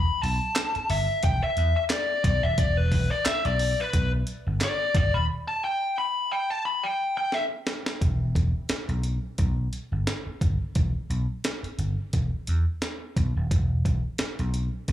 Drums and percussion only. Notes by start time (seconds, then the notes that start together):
0.23 open hi-hat
0.55 snare, clap, closed hi-hat
0.75 closed hi-hat
0.90 open hi-hat
1.23 kick, closed hi-hat
1.57 closed hi-hat
1.90 snare, clap, closed hi-hat
2.24 kick, closed hi-hat
2.58 kick, closed hi-hat
2.92 kick, open hi-hat
3.25 snare, clap, closed hi-hat
3.45 closed hi-hat
3.59 open hi-hat
3.93 kick, closed hi-hat
4.27 closed hi-hat
4.61 snare, clap, closed hi-hat
4.95 kick, closed hi-hat
7.32 snare
7.67 snare
7.86 snare
8.01 kick, closed hi-hat
8.35 kick, closed hi-hat
8.69 snare, closed hi-hat
8.89 closed hi-hat
9.03 closed hi-hat
9.38 kick, closed hi-hat
9.73 closed hi-hat
10.07 snare, closed hi-hat
10.41 kick, closed hi-hat
10.75 kick, closed hi-hat
11.11 closed hi-hat
11.44 snare, closed hi-hat
11.64 closed hi-hat
11.79 closed hi-hat
12.13 kick, closed hi-hat
12.47 closed hi-hat
12.82 snare, closed hi-hat
13.17 kick, closed hi-hat
13.51 kick, closed hi-hat
13.85 kick, closed hi-hat
14.18 snare, closed hi-hat
14.39 closed hi-hat
14.54 closed hi-hat
14.88 kick, closed hi-hat